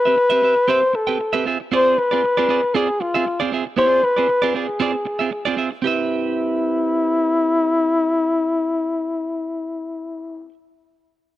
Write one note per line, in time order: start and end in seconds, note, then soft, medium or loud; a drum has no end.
0.00 0.71 B4 loud
0.05 0.15 C4 soft
0.05 0.16 G4 medium
0.05 0.15 B4 soft
0.05 0.15 E5 medium
0.17 muted clean electric guitar stroke soft
0.30 0.41 C4 medium
0.30 0.42 G4 medium
0.30 0.43 B4 medium
0.30 0.43 E5 loud
0.42 0.54 C4 medium
0.42 0.54 G4 medium
0.42 0.54 B4 medium
0.42 0.55 E5 medium
0.56 muted clean electric guitar stroke soft
0.68 0.82 C4 medium
0.68 0.82 G4 medium
0.68 0.82 B4 loud
0.68 0.97 C5 loud
0.68 0.81 E5 medium
0.82 muted clean electric guitar stroke medium
0.93 1.46 A4 medium
0.93 muted clean electric guitar stroke soft
1.07 1.18 C4 medium
1.07 1.18 G4 medium
1.07 1.18 B4 medium
1.07 1.17 G5 medium
1.19 muted clean electric guitar stroke soft
1.33 1.44 C4 medium
1.33 1.46 G4 medium
1.33 1.46 B4 loud
1.33 1.46 E5 medium
1.45 1.57 C4 medium
1.45 1.57 F4 medium
1.45 1.57 G#4 medium
1.45 1.58 E5 medium
1.60 muted clean electric guitar stroke soft
1.72 1.95 C4 medium
1.72 1.96 F4 medium
1.72 1.96 G#4 medium
1.72 2.00 C5 loud
1.72 1.96 D5 medium
1.98 2.76 B4 loud
1.98 muted clean electric guitar stroke soft
2.11 2.22 C4 medium
2.11 2.22 F4 medium
2.11 2.21 G#4 medium
2.11 2.21 D5 medium
2.24 muted clean electric guitar stroke soft
2.37 2.47 C4 medium
2.37 2.48 F4 medium
2.37 2.49 G#4 medium
2.37 2.49 D5 medium
2.49 2.60 C4 medium
2.49 2.60 F4 medium
2.49 2.61 G#4 medium
2.49 2.61 D5 medium
2.63 muted clean electric guitar stroke soft
2.75 2.89 C4 medium
2.75 2.89 F4 loud
2.75 3.02 G#4 medium
2.75 2.88 G#4 medium
2.75 2.88 D5 loud
2.89 muted clean electric guitar stroke soft
3.00 3.52 F4 medium
3.00 muted clean electric guitar stroke soft
3.14 3.25 C4 medium
3.14 3.25 F4 medium
3.14 3.24 G#4 medium
3.14 3.24 E5 medium
3.26 muted clean electric guitar stroke soft
3.40 3.51 C4 medium
3.40 3.52 F4 medium
3.40 3.52 G#4 medium
3.40 3.52 D5 medium
3.52 3.63 C4 medium
3.52 3.64 F4 medium
3.52 3.64 G#4 medium
3.52 3.64 E5 medium
3.65 muted clean electric guitar stroke soft
3.77 4.01 C4 medium
3.77 4.02 F4 medium
3.77 4.02 G#4 medium
3.77 4.05 C5 loud
3.77 4.02 D5 medium
4.03 4.55 B4 loud
4.03 muted clean electric guitar stroke soft
4.17 4.27 C4 soft
4.17 4.28 F4 medium
4.17 4.27 G#4 medium
4.17 4.27 D5 medium
4.29 muted clean electric guitar stroke soft
4.42 4.53 C4 medium
4.42 4.54 F4 medium
4.42 4.55 G#4 medium
4.42 4.55 D5 medium
4.54 4.66 C4 medium
4.54 4.66 F4 medium
4.54 4.67 G#4 medium
4.54 5.55 G#4 medium
4.54 4.67 D5 medium
4.68 muted clean electric guitar stroke soft
4.80 4.94 C4 medium
4.80 4.93 F4 medium
4.80 4.93 G#4 loud
4.80 4.92 D5 loud
4.93 muted clean electric guitar stroke medium
5.05 muted clean electric guitar stroke medium
5.19 5.30 C4 medium
5.19 5.30 F4 medium
5.19 5.30 G#4 medium
5.19 5.30 E5 medium
5.31 muted clean electric guitar stroke medium
5.45 5.56 C4 medium
5.45 5.56 F4 medium
5.45 5.57 G#4 medium
5.45 5.58 D5 medium
5.57 5.69 C4 medium
5.57 5.69 F4 medium
5.57 5.69 G#4 medium
5.57 5.69 E5 medium
5.71 muted clean electric guitar stroke soft
5.82 10.49 C4 medium
5.82 10.48 E4 loud
5.82 10.51 G4 medium
5.82 10.52 B4 medium
5.87 10.54 E5 medium